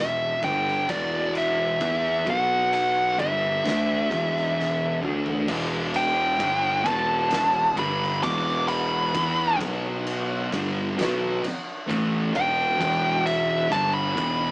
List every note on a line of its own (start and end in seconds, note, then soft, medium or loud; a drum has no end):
0.00 0.39 E1 medium
0.00 0.33 E2 medium
0.00 0.34 B2 medium
0.00 0.44 E5 medium
0.42 0.85 G1 medium
0.42 0.87 G2 medium
0.42 0.87 D3 medium
0.42 0.88 G3 medium
0.42 0.91 G5 loud
0.42 kick loud
0.42 ride medium
0.68 snare soft
0.89 1.77 E1 medium
0.89 1.79 E2 medium
0.89 1.79 B2 medium
0.89 1.78 E3 loud
0.89 1.32 D5 loud
0.89 kick loud
0.89 ride loud
1.35 2.30 E5 loud
1.35 ride medium
1.79 2.24 E2 medium
1.79 2.25 E3 medium
1.79 2.25 B3 loud
1.79 2.25 E4 loud
1.79 kick loud
1.79 ride medium
2.26 3.15 B1 medium
2.26 3.17 B2 medium
2.26 3.17 F#3 loud
2.26 3.18 B3 loud
2.26 kick loud
2.26 ride medium
2.30 2.73 F#5 medium
2.73 3.19 F#5 loud
2.73 ride medium
3.18 3.61 G1 medium
3.18 3.63 G2 medium
3.18 3.63 D3 loud
3.18 3.63 G3 loud
3.18 4.99 E5 medium
3.18 kick loud
3.18 ride medium
3.64 4.08 D2 medium
3.64 4.09 D3 medium
3.64 4.09 A3 loud
3.64 4.09 D4 loud
3.64 snare loud
3.64 ride loud
4.10 4.98 E1 loud
4.10 5.00 E2 medium
4.10 5.01 B2 medium
4.10 5.01 E3 loud
4.10 kick loud
4.10 ride medium
4.37 snare soft
4.60 snare medium
5.01 5.44 D2 medium
5.01 5.47 D3 medium
5.01 5.47 A3 medium
5.01 5.47 D4 medium
5.01 mid tom medium
5.26 floor tom medium
5.48 6.36 E1 loud
5.48 6.38 E2 loud
5.48 6.39 B2 loud
5.48 6.38 E3 loud
5.48 kick loud
5.48 crash loud
5.94 6.87 G5 loud
5.94 ride medium
6.39 6.82 G1 medium
6.39 6.83 G2 loud
6.39 6.84 D3 loud
6.39 6.84 G3 medium
6.39 kick loud
6.39 ride loud
6.83 7.28 E1 medium
6.83 7.29 E2 loud
6.83 7.29 B2 loud
6.83 7.30 E3 loud
6.83 7.75 A5 medium
6.83 kick loud
6.83 ride medium
7.30 7.73 E1 medium
7.30 7.67 E2 medium
7.30 7.68 B2 medium
7.30 snare loud
7.30 ride loud
7.76 8.20 G1 loud
7.76 8.21 G2 medium
7.76 8.21 D3 loud
7.76 8.21 G3 loud
7.76 8.22 B5 loud
7.76 kick loud
7.76 ride medium
8.03 snare soft
8.22 9.10 E1 loud
8.22 9.13 E2 medium
8.22 9.13 B2 loud
8.22 9.13 E3 loud
8.22 8.67 D6 medium
8.22 kick loud
8.22 ride loud
8.68 9.57 B5 loud
8.68 ride medium
9.14 9.56 E2 loud
9.14 9.61 E3 medium
9.14 9.61 B3 loud
9.14 9.61 E4 loud
9.14 kick loud
9.14 ride loud
9.61 10.48 B1 medium
9.61 10.50 B2 loud
9.61 10.50 F#3 loud
9.61 10.51 B3 loud
9.61 kick loud
9.61 ride medium
10.07 ride loud
10.52 10.94 G1 loud
10.52 10.96 G2 medium
10.52 10.96 D3 loud
10.52 10.97 G3 loud
10.52 kick loud
10.52 ride loud
10.97 11.40 B1 medium
10.97 11.41 B2 loud
10.97 11.42 F#3 loud
10.97 11.42 B3 loud
10.97 ride loud
11.01 snare loud
11.43 muted picked electric bass stroke soft
11.43 muted distorted electric guitar stroke medium
11.43 ride medium
11.87 12.31 A1 loud
11.87 12.32 A2 medium
11.87 12.32 E3 loud
11.87 12.33 A3 loud
11.87 kick loud
11.87 ride loud
12.33 12.77 E1 loud
12.33 12.77 E2 medium
12.33 12.78 B2 medium
12.33 12.78 E3 loud
12.33 13.24 G5 loud
12.33 kick loud
12.33 ride medium
12.78 13.67 E1 medium
12.78 13.69 E2 loud
12.78 13.69 B2 medium
12.78 13.69 E3 loud
12.78 kick loud
12.78 ride loud
13.26 13.70 E5 loud
13.26 ride medium
13.69 14.13 G1 loud
13.69 14.14 G2 medium
13.69 14.15 D3 loud
13.69 14.15 G3 medium
13.69 13.93 A5 loud
13.69 kick loud
13.69 ride loud
13.93 14.51 B5 medium
14.15 14.51 E1 loud
14.15 14.51 E2 loud
14.15 14.51 B2 medium
14.15 14.51 E3 loud
14.15 kick loud
14.15 ride medium